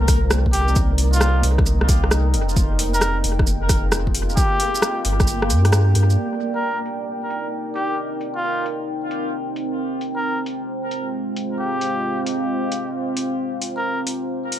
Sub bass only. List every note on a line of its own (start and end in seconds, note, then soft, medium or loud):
0.00 1.43 C2 loud
1.44 2.36 C2 loud
2.34 3.24 F1 medium
3.25 3.69 F1 loud
3.69 4.36 F1 medium
5.05 5.52 G1 loud
5.50 5.94 G2 loud
5.96 6.17 G2 loud